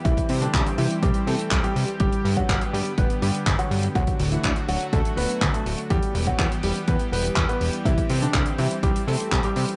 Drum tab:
HH |xxoxxxoxxxoxxxox|xxoxxxoxxxoxxxox|xxoxxxoxxxoxxxox|xxoxxxoxxxoxxxox|
CP |----x-------x---|----x-------x---|----x-------x---|----x-------x---|
BD |oo--o---o---o---|o--oo---o---o---|oo--o---o---o---|o--oo---o---o---|

HH |xxoxxxoxxxoxxxox|
CP |----x-------x---|
BD |oo--o---o---o---|